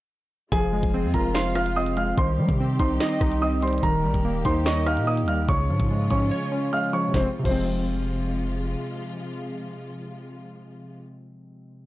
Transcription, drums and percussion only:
0.52 kick, closed hi-hat
0.83 kick, closed hi-hat
1.14 kick, closed hi-hat
1.35 snare, closed hi-hat
1.55 cross-stick
1.66 closed hi-hat
1.86 closed hi-hat
1.97 closed hi-hat
2.18 kick, closed hi-hat
2.49 kick, closed hi-hat
2.80 kick, closed hi-hat
3.00 snare, closed hi-hat
3.21 kick, cross-stick
3.32 closed hi-hat
3.62 closed hi-hat
3.68 closed hi-hat
3.73 closed hi-hat
3.78 closed hi-hat
3.83 kick, closed hi-hat
4.14 kick, closed hi-hat
4.45 kick, closed hi-hat
4.66 snare, closed hi-hat
4.86 cross-stick
4.97 closed hi-hat
5.17 closed hi-hat
5.28 closed hi-hat
5.49 kick, closed hi-hat
5.80 kick, closed hi-hat
6.10 kick, closed hi-hat
7.14 kick, snare
7.45 kick, crash

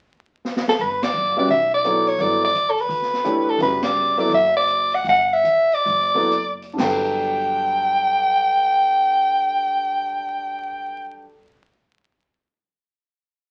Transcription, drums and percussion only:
0.45 snare
0.56 snare
0.68 snare
0.80 open hi-hat
1.02 snare, ride
1.50 open hi-hat
1.84 closed hi-hat
2.07 open hi-hat
2.19 open hi-hat
2.55 closed hi-hat
2.78 open hi-hat
2.90 open hi-hat
3.02 snare
3.13 snare
3.25 closed hi-hat
3.60 open hi-hat
3.82 snare, ride
4.18 open hi-hat
4.31 open hi-hat
4.68 closed hi-hat
4.92 open hi-hat
5.05 open hi-hat
5.45 closed hi-hat
5.72 open hi-hat
5.87 open hi-hat
6.15 kick
6.32 closed hi-hat
6.62 open hi-hat
6.79 snare, crash

